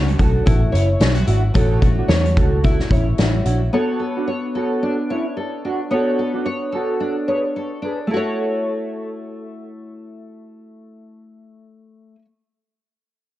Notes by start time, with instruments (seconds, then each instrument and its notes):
Already playing: picked electric bass C#2, nylon-string guitar A3 C#4 F#4 C#5
0.08 closed hi-hat
0.18 picked electric bass B1, nylon-string guitar F#4, clean electric guitar F#4 A4, kick, closed hi-hat
0.46 picked electric bass A1, nylon-string guitar E4, kick, closed hi-hat
0.72 picked electric bass F#1, clean electric guitar C#4 E4, nylon-string guitar C#5, closed hi-hat
1.00 picked electric bass B1, nylon-string guitar E4, snare, closed hi-hat
1.14 nylon-string guitar F#4, closed hi-hat
1.27 picked electric bass G#1, clean electric guitar D4 F#4, nylon-string guitar E4, closed hi-hat
1.54 picked electric bass A1, nylon-string guitar A3 C#5, clean electric guitar F#4 A4, kick, closed hi-hat
1.82 nylon-string guitar F#4, kick, closed hi-hat
1.98 clean electric guitar D4 F#4
2.08 picked electric bass E2, nylon-string guitar C#5, snare, closed hi-hat
2.25 closed hi-hat
2.37 picked electric bass C#2, nylon-string guitar F#4, clean electric guitar F#4 A4, kick, closed hi-hat
2.64 nylon-string guitar E4, kick, closed hi-hat
2.80 snare
2.91 picked electric bass A1, clean electric guitar C#4 E4, nylon-string guitar C#5, kick, closed hi-hat
3.18 picked electric bass A1, nylon-string guitar F#4, snare, closed hi-hat
3.45 picked electric bass A#1, clean electric guitar D4 F#4, nylon-string guitar E4, closed hi-hat
3.73 nylon-string guitar B3 C#5, clean electric guitar F#4 A4
3.99 nylon-string guitar A4
4.17 clean electric guitar D4 F#4
4.28 nylon-string guitar C#5
4.55 clean electric guitar F#4 A4, nylon-string guitar A4
4.83 nylon-string guitar D4
5.10 clean electric guitar C#4 E4, nylon-string guitar C#5
5.37 nylon-string guitar A4
5.65 nylon-string guitar D4, clean electric guitar D4 F#4
5.91 nylon-string guitar B3 C#5, clean electric guitar F#4 A4
6.19 nylon-string guitar A4
6.34 clean electric guitar D4 F#4
6.46 nylon-string guitar C#5
6.72 clean electric guitar F#4 A4, nylon-string guitar A4
7.00 nylon-string guitar D4
7.28 clean electric guitar G#4 B4, nylon-string guitar C#5
7.56 nylon-string guitar A4
7.82 nylon-string guitar D4, clean electric guitar G#4 B4
8.07 nylon-string guitar A3 E4, clean electric guitar A4
8.14 nylon-string guitar F#4 C#5